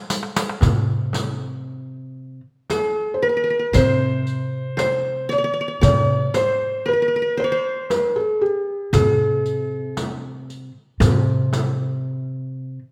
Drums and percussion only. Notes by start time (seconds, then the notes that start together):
0.10 riq, darbuka tek
0.23 darbuka ka
0.36 riq, darbuka tek
0.49 darbuka ka
0.61 riq, frame drum, darbuka dum
1.13 riq, darbuka tek, frame drum
2.70 riq, darbuka tek, frame drum
3.74 riq, frame drum, darbuka dum
4.27 riq
4.78 riq, darbuka tek, frame drum
5.31 riq, darbuka ka
5.83 riq, frame drum, darbuka dum
6.34 riq, darbuka tek, frame drum
7.90 riq, darbuka tek, frame drum
8.93 riq, darbuka dum, frame drum
9.46 riq
9.97 riq, darbuka tek, frame drum
10.50 riq, darbuka ka
11.01 riq, darbuka dum, frame drum
11.53 riq, darbuka tek, frame drum